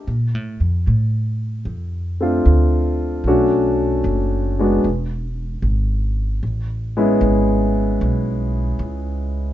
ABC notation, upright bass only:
X:1
M:4/4
L:1/8
Q:"Swing" 1/4=76
K:Bblyd
V:1 name="Upright bass" clef=bass
(3B,, A,, F,, A,,2 F,,2 D,,2 | =B,,,2 ^F,,,2 E,,,2 ^G,,,2 | A,,,2 ^G,,,2 =B,,,2 ^C,,2 |]